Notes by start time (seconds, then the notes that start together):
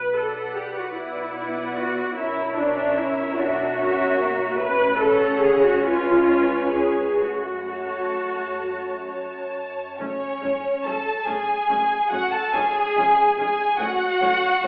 Already playing: B1 B4
0.16 A4 B4 D5 F#5
0.56 G4
0.78 F#4
0.96 B1 B3 E4
1.36 B4 D5 F#5
1.76 F#4
2.16 B1 C#4 E4 A#4 C#5 E5
2.57 D4 A#4 C#5 E5
2.98 E4
3.37 B1 D4 F#4
3.78 C#4 A#4 C#5 E5
4.18 A#3
4.59 A1 C#4 B4
5.00 A4 C#5 F#5
5.43 G#4
5.65 F#4
5.86 C#2 F4 B4 C#5 G#5
6.28 B4 C#5 G#5
6.74 G#4
7.21 F#2 A3 F#4
7.67 C#5 A5
8.62 F#2
9.07 C#5 A5
9.99 F#1 F#2 A3 C#4 C#5
10.42 F#1 F#2 A3 C#4
10.84 F#1 F#2 A3 C#4 A4 A5
11.26 F#1 F#2 A3 C#4 G#4 G#5
11.69 F#1 F#2 A3 C#4
12.12 F#1 F#2 A3 C#4 F#4 F#5
12.32 A4 A5
12.54 F1 F2 G#3 C#4 G#4 G#5
12.97 F1 F2 G#3 C#4
13.38 F1 F2 G#3 C#4 G#4 G#5
13.79 F#1 F#2 A3 C#4 F#4 F#5
14.21 F#1 F#2 A3 C#4
14.63 F#1 F#2